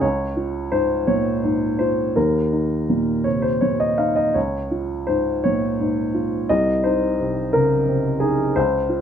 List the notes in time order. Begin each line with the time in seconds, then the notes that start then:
0.01 C#2 C#5
0.37 F4
0.72 G#2 C5
1.07 A#2 C#5
1.44 G#2
1.79 F4 C5
2.16 D#2 A#4
2.52 D#4
2.89 A#2
3.24 C3 C#5
3.42 C5
3.61 A#2 C#5
3.80 D#5
3.98 D#4 F5
4.16 D#5
4.34 C#2 C#5
4.71 F4
5.07 G#2 C5
5.44 A#2 C#5
5.80 G#2
6.14 F4
6.49 C2 D#5
6.84 D#4 C5
7.20 C3
7.53 C#3 A#4
7.88 C3
8.20 D#4 G#4
8.56 C#2 C5
8.89 F4